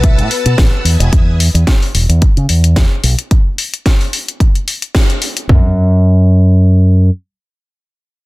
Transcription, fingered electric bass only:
0, 0, Header, 1, 3, 480
1, 0, Start_track
1, 0, Tempo, 545455
1, 994, Time_signature, 4, 2, 24, 8
1, 7268, End_track
2, 0, Start_track
2, 0, Title_t, "Fingered electric bass"
2, 0, Program_c, 0, 33
2, 0, Note_on_c, 0, 35, 91
2, 161, Note_on_c, 0, 45, 91
2, 174, Note_off_c, 0, 35, 0
2, 237, Note_off_c, 0, 45, 0
2, 401, Note_on_c, 0, 47, 80
2, 477, Note_off_c, 0, 47, 0
2, 511, Note_on_c, 0, 33, 81
2, 602, Note_off_c, 0, 33, 0
2, 743, Note_on_c, 0, 40, 82
2, 838, Note_off_c, 0, 40, 0
2, 877, Note_on_c, 0, 28, 97
2, 955, Note_off_c, 0, 28, 0
2, 1358, Note_on_c, 0, 40, 105
2, 1435, Note_off_c, 0, 40, 0
2, 1709, Note_on_c, 0, 28, 83
2, 1801, Note_off_c, 0, 28, 0
2, 1840, Note_on_c, 0, 40, 94
2, 1948, Note_off_c, 0, 40, 0
2, 2086, Note_on_c, 0, 49, 106
2, 2159, Note_off_c, 0, 49, 0
2, 2193, Note_on_c, 0, 40, 89
2, 2497, Note_off_c, 0, 40, 0
2, 2670, Note_on_c, 0, 35, 87
2, 2761, Note_off_c, 0, 35, 0
2, 4833, Note_on_c, 0, 42, 90
2, 6238, Note_off_c, 0, 42, 0
2, 7268, End_track
3, 0, Start_track
3, 0, Title_t, "Muted fingered electric bass strokes"
3, 1954, Note_on_c, 9, 29, 43
3, 2042, Note_off_c, 9, 29, 0
3, 7268, End_track
0, 0, End_of_file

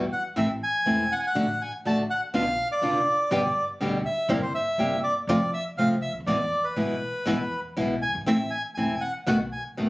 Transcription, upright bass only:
0, 0, Header, 1, 2, 480
1, 0, Start_track
1, 0, Key_signature, 0, "minor"
1, 0, Tempo, 491400
1, 360, Time_signature, 4, 2, 24, 8
1, 5631, Tempo, 500000
1, 9593, End_track
2, 0, Start_track
2, 0, Title_t, "Upright bass"
2, 0, Program_c, 0, 32
2, 356, Note_on_c, 0, 33, 88
2, 563, Note_off_c, 0, 33, 0
2, 846, Note_on_c, 0, 28, 56
2, 1050, Note_off_c, 0, 28, 0
2, 1329, Note_on_c, 0, 33, 87
2, 1533, Note_off_c, 0, 33, 0
2, 1812, Note_on_c, 0, 33, 63
2, 2014, Note_off_c, 0, 33, 0
2, 2285, Note_on_c, 0, 35, 92
2, 2486, Note_off_c, 0, 35, 0
2, 2757, Note_on_c, 0, 29, 52
2, 2959, Note_off_c, 0, 29, 0
2, 3235, Note_on_c, 0, 31, 92
2, 3437, Note_off_c, 0, 31, 0
2, 3715, Note_on_c, 0, 38, 61
2, 3915, Note_off_c, 0, 38, 0
2, 4186, Note_on_c, 0, 31, 91
2, 4388, Note_off_c, 0, 31, 0
2, 4669, Note_on_c, 0, 31, 63
2, 4870, Note_off_c, 0, 31, 0
2, 5150, Note_on_c, 0, 41, 86
2, 5354, Note_off_c, 0, 41, 0
2, 5638, Note_on_c, 0, 36, 64
2, 5835, Note_off_c, 0, 36, 0
2, 5933, Note_on_c, 0, 37, 50
2, 5981, Note_off_c, 0, 37, 0
2, 5987, Note_on_c, 0, 38, 64
2, 6046, Note_off_c, 0, 38, 0
2, 6052, Note_on_c, 0, 39, 72
2, 6105, Note_off_c, 0, 39, 0
2, 6110, Note_on_c, 0, 40, 87
2, 6311, Note_off_c, 0, 40, 0
2, 6591, Note_on_c, 0, 35, 62
2, 6791, Note_off_c, 0, 35, 0
2, 7070, Note_on_c, 0, 40, 87
2, 7274, Note_off_c, 0, 40, 0
2, 7555, Note_on_c, 0, 35, 61
2, 7760, Note_off_c, 0, 35, 0
2, 7862, Note_on_c, 0, 30, 45
2, 7912, Note_off_c, 0, 30, 0
2, 7917, Note_on_c, 0, 31, 64
2, 7974, Note_off_c, 0, 31, 0
2, 7980, Note_on_c, 0, 32, 68
2, 8039, Note_off_c, 0, 32, 0
2, 8045, Note_on_c, 0, 33, 89
2, 8243, Note_off_c, 0, 33, 0
2, 8517, Note_on_c, 0, 28, 56
2, 8720, Note_off_c, 0, 28, 0
2, 9002, Note_on_c, 0, 35, 92
2, 9201, Note_off_c, 0, 35, 0
2, 9486, Note_on_c, 0, 30, 59
2, 9593, Note_off_c, 0, 30, 0
2, 9593, End_track
0, 0, End_of_file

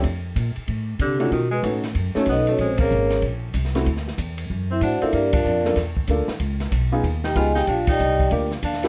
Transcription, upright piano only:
0, 0, Header, 1, 2, 480
1, 0, Start_track
1, 0, Tempo, 317965
1, 69, Time_signature, 4, 2, 24, 8
1, 13407, End_track
2, 0, Start_track
2, 0, Title_t, "Upright piano"
2, 0, Program_c, 0, 0
2, 1799, Note_on_c, 0, 57, 63
2, 1803, Note_on_c, 0, 61, 55
2, 1809, Note_on_c, 0, 63, 55
2, 1815, Note_on_c, 0, 66, 71
2, 1963, Note_off_c, 0, 57, 0
2, 1965, Note_off_c, 0, 61, 0
2, 1968, Note_off_c, 0, 63, 0
2, 1971, Note_off_c, 0, 66, 0
2, 2459, Note_on_c, 0, 57, 57
2, 2468, Note_on_c, 0, 63, 52
2, 2469, Note_on_c, 0, 61, 52
2, 2475, Note_on_c, 0, 66, 60
2, 2738, Note_off_c, 0, 57, 0
2, 2743, Note_off_c, 0, 61, 0
2, 2743, Note_off_c, 0, 63, 0
2, 2746, Note_off_c, 0, 66, 0
2, 3245, Note_on_c, 0, 61, 67
2, 3247, Note_on_c, 0, 57, 72
2, 3253, Note_on_c, 0, 63, 61
2, 3257, Note_on_c, 0, 69, 78
2, 3406, Note_off_c, 0, 61, 0
2, 3407, Note_off_c, 0, 57, 0
2, 3410, Note_off_c, 0, 63, 0
2, 3412, Note_off_c, 0, 69, 0
2, 5661, Note_on_c, 0, 57, 64
2, 5668, Note_on_c, 0, 60, 56
2, 5668, Note_on_c, 0, 66, 66
2, 5672, Note_on_c, 0, 64, 55
2, 5814, Note_off_c, 0, 57, 0
2, 5817, Note_off_c, 0, 60, 0
2, 5817, Note_off_c, 0, 66, 0
2, 5820, Note_off_c, 0, 64, 0
2, 7580, Note_on_c, 0, 62, 54
2, 7585, Note_on_c, 0, 65, 52
2, 7586, Note_on_c, 0, 58, 59
2, 7587, Note_on_c, 0, 69, 67
2, 7733, Note_off_c, 0, 62, 0
2, 7735, Note_off_c, 0, 65, 0
2, 7736, Note_off_c, 0, 58, 0
2, 7737, Note_off_c, 0, 69, 0
2, 8538, Note_on_c, 0, 58, 66
2, 8542, Note_on_c, 0, 62, 57
2, 8544, Note_on_c, 0, 65, 54
2, 8546, Note_on_c, 0, 69, 67
2, 8692, Note_off_c, 0, 58, 0
2, 8694, Note_off_c, 0, 62, 0
2, 8695, Note_off_c, 0, 65, 0
2, 8696, Note_off_c, 0, 69, 0
2, 9196, Note_on_c, 0, 58, 62
2, 9203, Note_on_c, 0, 62, 55
2, 9209, Note_on_c, 0, 65, 54
2, 9213, Note_on_c, 0, 69, 63
2, 9466, Note_off_c, 0, 58, 0
2, 9470, Note_off_c, 0, 62, 0
2, 9473, Note_off_c, 0, 65, 0
2, 9475, Note_off_c, 0, 69, 0
2, 10447, Note_on_c, 0, 59, 69
2, 10451, Note_on_c, 0, 65, 68
2, 10455, Note_on_c, 0, 63, 65
2, 10462, Note_on_c, 0, 68, 78
2, 10606, Note_off_c, 0, 59, 0
2, 10608, Note_off_c, 0, 65, 0
2, 10610, Note_off_c, 0, 63, 0
2, 10614, Note_off_c, 0, 68, 0
2, 11102, Note_on_c, 0, 71, 67
2, 11104, Note_on_c, 0, 59, 62
2, 11104, Note_on_c, 0, 63, 51
2, 11109, Note_on_c, 0, 65, 54
2, 11379, Note_off_c, 0, 71, 0
2, 11380, Note_off_c, 0, 59, 0
2, 11380, Note_off_c, 0, 63, 0
2, 11383, Note_off_c, 0, 65, 0
2, 12552, Note_on_c, 0, 58, 66
2, 12554, Note_on_c, 0, 62, 58
2, 12557, Note_on_c, 0, 65, 58
2, 12562, Note_on_c, 0, 67, 69
2, 12824, Note_off_c, 0, 58, 0
2, 12825, Note_off_c, 0, 62, 0
2, 12826, Note_off_c, 0, 65, 0
2, 12829, Note_off_c, 0, 67, 0
2, 13330, Note_on_c, 0, 58, 65
2, 13336, Note_on_c, 0, 62, 62
2, 13345, Note_on_c, 0, 64, 61
2, 13347, Note_on_c, 0, 67, 73
2, 13407, Note_off_c, 0, 58, 0
2, 13407, Note_off_c, 0, 62, 0
2, 13407, Note_off_c, 0, 64, 0
2, 13407, Note_off_c, 0, 67, 0
2, 13407, End_track
0, 0, End_of_file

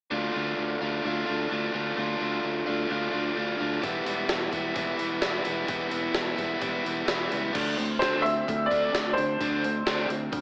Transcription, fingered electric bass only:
0, 0, Header, 1, 2, 480
1, 0, Start_track
1, 0, Tempo, 464396
1, 116, Time_signature, 4, 2, 24, 8
1, 10761, End_track
2, 0, Start_track
2, 0, Title_t, "Fingered electric bass"
2, 0, Program_c, 0, 33
2, 120, Note_on_c, 0, 38, 76
2, 298, Note_off_c, 0, 38, 0
2, 370, Note_on_c, 0, 38, 68
2, 545, Note_off_c, 0, 38, 0
2, 607, Note_on_c, 0, 38, 57
2, 783, Note_off_c, 0, 38, 0
2, 842, Note_on_c, 0, 38, 71
2, 1020, Note_off_c, 0, 38, 0
2, 1086, Note_on_c, 0, 38, 79
2, 1263, Note_off_c, 0, 38, 0
2, 1339, Note_on_c, 0, 38, 75
2, 1511, Note_off_c, 0, 38, 0
2, 1571, Note_on_c, 0, 38, 67
2, 1746, Note_off_c, 0, 38, 0
2, 1803, Note_on_c, 0, 38, 73
2, 1982, Note_off_c, 0, 38, 0
2, 2045, Note_on_c, 0, 38, 89
2, 2223, Note_off_c, 0, 38, 0
2, 2285, Note_on_c, 0, 38, 70
2, 2463, Note_off_c, 0, 38, 0
2, 2526, Note_on_c, 0, 38, 68
2, 2704, Note_off_c, 0, 38, 0
2, 2775, Note_on_c, 0, 38, 70
2, 2949, Note_off_c, 0, 38, 0
2, 2999, Note_on_c, 0, 38, 84
2, 3180, Note_off_c, 0, 38, 0
2, 3242, Note_on_c, 0, 38, 72
2, 3422, Note_off_c, 0, 38, 0
2, 3479, Note_on_c, 0, 38, 68
2, 3660, Note_off_c, 0, 38, 0
2, 3727, Note_on_c, 0, 38, 68
2, 3905, Note_off_c, 0, 38, 0
2, 3963, Note_on_c, 0, 28, 87
2, 4142, Note_off_c, 0, 28, 0
2, 4197, Note_on_c, 0, 28, 74
2, 4378, Note_off_c, 0, 28, 0
2, 4450, Note_on_c, 0, 28, 69
2, 4627, Note_off_c, 0, 28, 0
2, 4683, Note_on_c, 0, 28, 72
2, 4862, Note_off_c, 0, 28, 0
2, 4925, Note_on_c, 0, 28, 85
2, 5103, Note_off_c, 0, 28, 0
2, 5163, Note_on_c, 0, 28, 68
2, 5342, Note_off_c, 0, 28, 0
2, 5410, Note_on_c, 0, 28, 74
2, 5586, Note_off_c, 0, 28, 0
2, 5650, Note_on_c, 0, 28, 84
2, 5827, Note_off_c, 0, 28, 0
2, 5876, Note_on_c, 0, 28, 89
2, 6058, Note_off_c, 0, 28, 0
2, 6110, Note_on_c, 0, 28, 76
2, 6294, Note_off_c, 0, 28, 0
2, 6351, Note_on_c, 0, 28, 68
2, 6534, Note_off_c, 0, 28, 0
2, 6600, Note_on_c, 0, 28, 71
2, 6779, Note_off_c, 0, 28, 0
2, 6840, Note_on_c, 0, 28, 84
2, 7019, Note_off_c, 0, 28, 0
2, 7086, Note_on_c, 0, 28, 74
2, 7263, Note_off_c, 0, 28, 0
2, 7316, Note_on_c, 0, 28, 77
2, 7497, Note_off_c, 0, 28, 0
2, 7570, Note_on_c, 0, 37, 75
2, 7745, Note_off_c, 0, 37, 0
2, 7806, Note_on_c, 0, 38, 91
2, 8024, Note_off_c, 0, 38, 0
2, 8058, Note_on_c, 0, 38, 74
2, 8270, Note_off_c, 0, 38, 0
2, 8289, Note_on_c, 0, 38, 69
2, 8725, Note_off_c, 0, 38, 0
2, 8771, Note_on_c, 0, 38, 80
2, 8986, Note_off_c, 0, 38, 0
2, 9007, Note_on_c, 0, 38, 70
2, 9223, Note_off_c, 0, 38, 0
2, 9234, Note_on_c, 0, 38, 82
2, 9456, Note_off_c, 0, 38, 0
2, 9485, Note_on_c, 0, 38, 83
2, 9701, Note_off_c, 0, 38, 0
2, 9720, Note_on_c, 0, 38, 84
2, 10159, Note_off_c, 0, 38, 0
2, 10198, Note_on_c, 0, 38, 72
2, 10416, Note_off_c, 0, 38, 0
2, 10433, Note_on_c, 0, 38, 70
2, 10653, Note_off_c, 0, 38, 0
2, 10676, Note_on_c, 0, 38, 80
2, 10761, Note_off_c, 0, 38, 0
2, 10761, End_track
0, 0, End_of_file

